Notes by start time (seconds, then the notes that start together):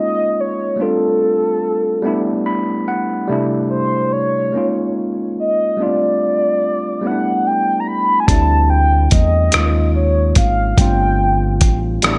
Already playing: G#3 A#3 C#4 D#4 F4
0.00 D#5
0.40 C#5
0.76 G3 A3 B3 D4
0.81 F4 A4
0.85 C4
2.02 G3 A3 B3 D4
2.07 E4
2.46 B5
2.88 F#5
3.27 C3 G3 A3 D4
3.33 E4
3.70 C5
4.12 C#5
4.52 G#3 A#3 C#4
4.56 D#4 F4
5.40 D#5
5.77 G3 A3 B3 D4
5.82 C4 F4 D5
7.01 G3 A3 B3 C#4
7.06 E4 F#5
7.11 D4
7.47 G5
7.80 A#5
7.87 B5
8.20 G#5
8.26 D2 G3 A3 C4 A5, kick, closed hi-hat
8.31 D4 E4
8.70 G5
9.11 E2 D#5, kick, closed hi-hat
9.52 D#2 G3 A#3 C#4 D#4, cross-stick, closed hi-hat
9.56 G#3 F4
9.95 C#5
10.35 G#1 F5, kick, closed hi-hat
10.77 G1 G3 A3 C4 D4 G5, kick, closed hi-hat
10.81 F4
11.61 A1, kick, closed hi-hat
12.02 A1 G3 A3 B3, cross-stick, closed hi-hat
12.07 D4 E4